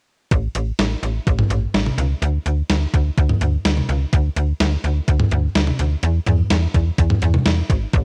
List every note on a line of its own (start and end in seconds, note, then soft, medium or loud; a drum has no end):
0.31 0.48 A1 loud
0.31 kick loud
0.31 closed hi-hat medium
0.55 0.72 A1 loud
0.55 closed hi-hat medium
0.79 0.96 A1 loud
0.79 snare loud
0.79 closed hi-hat medium
1.03 1.20 A1 medium
1.03 closed hi-hat medium
1.27 1.44 A1 loud
1.27 kick medium
1.27 closed hi-hat medium
1.39 mid tom medium
1.50 1.67 A1 loud
1.50 closed hi-hat medium
1.74 1.91 A1 medium
1.74 snare loud
1.74 closed hi-hat medium
1.86 mid tom medium
1.98 2.15 C#2 medium
1.98 closed hi-hat medium
2.22 2.39 D2 loud
2.22 closed hi-hat medium
2.46 2.62 D2 medium
2.46 closed hi-hat medium
2.69 2.86 D2 loud
2.69 snare loud
2.69 closed hi-hat medium
2.94 3.10 D2 medium
2.94 kick medium
2.94 closed hi-hat medium
3.17 3.34 D2 loud
3.17 kick medium
3.17 closed hi-hat medium
3.29 mid tom medium
3.41 3.58 D2 loud
3.41 closed hi-hat medium
3.65 3.82 D2 medium
3.65 snare loud
3.65 closed hi-hat medium
3.77 mid tom medium
3.89 4.05 C#2 loud
3.89 closed hi-hat medium
4.13 4.29 D2 loud
4.13 kick loud
4.13 closed hi-hat medium
4.36 4.53 D2 loud
4.36 closed hi-hat medium
4.60 4.77 D2 loud
4.60 snare loud
4.60 closed hi-hat medium
4.84 5.01 D2 loud
4.84 closed hi-hat medium
5.08 5.25 D2 loud
5.08 kick medium
5.08 closed hi-hat medium
5.20 mid tom medium
5.31 5.48 D2 loud
5.31 closed hi-hat medium
5.55 5.72 D2 medium
5.55 snare loud
5.55 closed hi-hat medium
5.67 mid tom medium
5.79 5.96 D2 medium
5.79 closed hi-hat medium
6.03 6.20 E2 loud
6.03 closed hi-hat medium
6.27 6.43 E2 loud
6.27 closed hi-hat medium
6.27 mid tom medium
6.50 6.67 E2 loud
6.50 snare loud
6.50 closed hi-hat medium
6.74 6.91 E2 medium
6.74 kick medium
6.74 closed hi-hat medium
6.98 7.15 E2 loud
6.98 kick medium
6.98 closed hi-hat medium
7.10 mid tom medium
7.22 7.39 E2 loud
7.22 closed hi-hat medium
7.34 mid tom medium
7.46 7.63 E2 medium
7.46 snare loud
7.46 closed hi-hat medium
7.70 7.86 G#1 medium
7.70 kick medium
7.70 closed hi-hat medium
7.93 8.04 A1 loud
7.93 kick loud
7.93 closed hi-hat medium